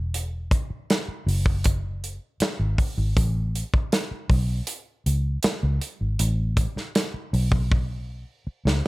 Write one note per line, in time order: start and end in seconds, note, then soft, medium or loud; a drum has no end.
0.00 0.51 E1 medium
0.14 closed hi-hat loud
0.51 kick loud
0.51 closed hi-hat medium
0.70 muted fingered electric bass stroke soft
0.90 snare loud
0.90 closed hi-hat medium
1.08 muted fingered electric bass stroke soft
1.26 2.17 F#1 loud
1.26 open hi-hat medium
1.46 kick medium
1.64 kick loud
1.64 closed hi-hat loud
2.04 closed hi-hat medium
2.40 muted fingered electric bass stroke soft
2.40 snare loud
2.40 closed hi-hat medium
2.59 2.75 G#1 medium
2.78 kick medium
2.78 open hi-hat soft
2.98 3.13 G#1 medium
3.17 3.62 A1 loud
3.17 kick loud
3.17 closed hi-hat loud
3.55 closed hi-hat medium
3.74 muted fingered electric bass stroke soft
3.74 kick loud
3.92 snare loud
3.92 closed hi-hat medium
4.11 muted fingered electric bass stroke soft
4.30 4.60 B1 medium
4.30 kick loud
4.30 open hi-hat medium
4.67 closed hi-hat loud
5.06 5.36 C#2 medium
5.06 closed hi-hat medium
5.43 muted fingered electric bass stroke medium
5.43 snare loud
5.43 closed hi-hat loud
5.63 5.78 C#2 loud
5.82 closed hi-hat medium
6.01 6.16 G#1 medium
6.19 6.65 A1 loud
6.19 closed hi-hat loud
6.57 kick medium
6.57 closed hi-hat medium
6.76 muted fingered electric bass stroke soft
6.76 snare soft
6.95 snare loud
6.95 closed hi-hat medium
7.14 muted fingered electric bass stroke soft
7.33 8.24 B1 loud
7.33 open hi-hat medium
7.52 kick medium
7.72 kick loud
8.47 muted fingered electric bass stroke medium
8.65 8.81 C#2 medium
8.65 snare medium